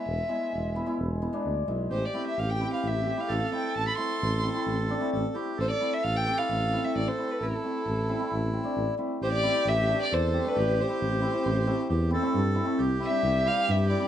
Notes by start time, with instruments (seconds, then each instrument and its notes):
Already playing: hammered dulcimer G#3, violin E5
0.07 tuba E1
0.29 hammered dulcimer G#3 B3 E4
0.54 tuba E1
0.75 hammered dulcimer B3 E4
0.86 hammered dulcimer G#3 B3 E4
0.99 tuba E1
1.22 hammered dulcimer B3 E4
1.33 hammered dulcimer G#3 B3 D4
1.46 tuba D2
1.68 tuba B1, hammered dulcimer G#3 B3 E4
1.90 tuba A1, accordion G4, violin C5
2.05 violin D5
2.14 hammered dulcimer A3 C4 E4
2.27 violin E5
2.37 tuba A1, violin F5
2.50 violin G5
2.60 hammered dulcimer C4 E4
2.72 hammered dulcimer A3 C4 E4, violin F5
2.83 tuba A1, violin E5
3.06 hammered dulcimer C4 G4
3.17 hammered dulcimer A3 C4 E4, violin F5
3.28 tuba A1, accordion A4
3.52 hammered dulcimer A3 C4 E4, violin G5
3.76 tuba A1, violin A5
3.88 violin B5
3.97 hammered dulcimer A3 C4 E4, violin C6
4.22 tuba A1
4.43 hammered dulcimer C4 E4
4.54 hammered dulcimer A3 C4 E4
4.67 tuba A1
4.89 hammered dulcimer C4 D4
5.01 hammered dulcimer A3 C4 E4
5.12 tuba A1, accordion A4
5.34 hammered dulcimer A3 C4 E4, accordion G4
5.58 tuba A1, accordion A4, violin C5
5.71 violin D5
5.80 hammered dulcimer A3 C4 E4
5.94 violin E5
6.03 tuba A1, violin F5
6.16 violin G5
6.26 hammered dulcimer C4 G4
6.38 hammered dulcimer A3 C4 E4, violin F5
6.50 tuba A1
6.72 hammered dulcimer C4 E4
6.83 hammered dulcimer A3 C4 E4, violin E5
6.95 tuba A1, violin D5
7.08 violin C5
7.18 hammered dulcimer A3 C4 E4
7.31 violin B4
7.41 tuba A1, accordion E4, violin A4
7.63 hammered dulcimer A3 C4 E4
7.86 tuba A1
8.09 hammered dulcimer C4 E4
8.19 hammered dulcimer A3 C4 E4
8.32 tuba A1
8.53 hammered dulcimer C4 E4
8.63 hammered dulcimer A3 C4 D4
8.76 tuba A1
8.98 hammered dulcimer A3 C4 E4
9.21 tuba A1, accordion G4, violin C5
9.33 violin D5
9.43 hammered dulcimer C4 E4
9.53 hammered dulcimer A3 C4 E4
9.66 tuba A1, violin E5
9.86 hammered dulcimer A3 C4 D4
10.02 violin D5
10.11 tuba E2, accordion A4, violin C5
10.33 hammered dulcimer C4 G4
10.45 hammered dulcimer A3 C4 D4, violin B4
10.55 tuba A1, accordion G4
10.77 hammered dulcimer C4 G4, violin C5
10.88 hammered dulcimer A3 C4 E4, violin C5
11.01 tuba A1
11.21 hammered dulcimer C4 E4
11.33 hammered dulcimer A3 C4 E4
11.45 tuba A1
11.67 hammered dulcimer A3 C4 E4
11.89 tuba E2, accordion G4
12.10 hammered dulcimer C4 E4, accordion A4
12.22 hammered dulcimer A3 C4 E4
12.35 tuba G2
12.54 hammered dulcimer C4 E4
12.65 hammered dulcimer A3 C4 E4
12.78 tuba C2, accordion G4
12.99 hammered dulcimer C4 E4
13.04 violin E5
13.09 hammered dulcimer G3 C4 D4
13.23 tuba C2
13.44 hammered dulcimer G3 C4 E4, violin F5
13.69 tuba G2, violin E5
13.88 hammered dulcimer C4 E4, violin D5
13.99 hammered dulcimer G3 C4 D4